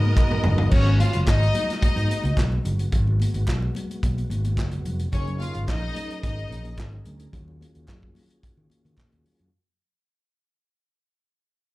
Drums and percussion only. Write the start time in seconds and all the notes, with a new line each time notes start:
0.05 high conga
0.17 kick, clap, mid tom, muted conga
0.31 mid tom
0.44 floor tom, low conga
0.58 floor tom
0.71 kick, crash, muted conga, low conga
0.87 muted conga
1.00 closed hi-hat, high conga
1.13 closed hi-hat
1.27 kick, snare, clap
1.43 closed hi-hat
1.55 closed hi-hat, high conga, low conga
1.70 snare, closed hi-hat
1.82 kick, closed hi-hat, muted conga, high conga
1.97 closed hi-hat, muted conga
2.08 closed hi-hat, high conga
2.23 closed hi-hat, high conga
2.37 kick, snare, clap, muted conga
2.40 clap
2.52 muted conga
2.65 closed hi-hat, low conga
2.79 closed hi-hat
2.92 kick, closed hi-hat, muted conga, low conga
3.07 muted conga
3.20 closed hi-hat, high conga
3.34 closed hi-hat
3.48 kick, snare, clap, muted conga
3.50 clap
3.62 muted conga
3.75 closed hi-hat, high conga, low conga
3.91 closed hi-hat
4.03 kick, closed hi-hat, muted conga, high conga
4.18 closed hi-hat, muted conga
4.30 closed hi-hat, high conga
4.44 closed hi-hat, high conga
4.57 kick, snare, clap
4.60 clap
4.71 closed hi-hat, muted conga
4.85 closed hi-hat, low conga
4.99 closed hi-hat
5.12 kick, closed hi-hat, muted conga, low conga
5.27 closed hi-hat, muted conga
5.40 closed hi-hat, high conga
5.54 closed hi-hat
5.68 kick, snare, clap
5.70 clap
5.95 closed hi-hat, high conga, low conga
6.10 closed hi-hat
6.23 kick, closed hi-hat, muted conga, high conga
6.38 closed hi-hat
6.50 closed hi-hat, high conga
6.64 closed hi-hat, high conga
6.78 kick, snare, clap
6.80 clap
6.93 muted conga
7.05 closed hi-hat, low conga
7.20 closed hi-hat
7.33 kick, closed hi-hat, muted conga, low conga
7.48 muted conga
7.61 closed hi-hat, high conga
7.75 closed hi-hat
7.88 kick, snare, clap, muted conga
7.90 clap
8.02 kick, muted conga
8.15 open hi-hat, high conga, low conga
8.30 closed hi-hat
8.43 kick, closed hi-hat, muted conga, high conga
8.57 muted conga
8.70 closed hi-hat, high conga
8.85 closed hi-hat, high conga
8.97 kick, snare, clap
9.00 clap
9.12 closed hi-hat, muted conga
9.26 open hi-hat, low conga
9.39 closed hi-hat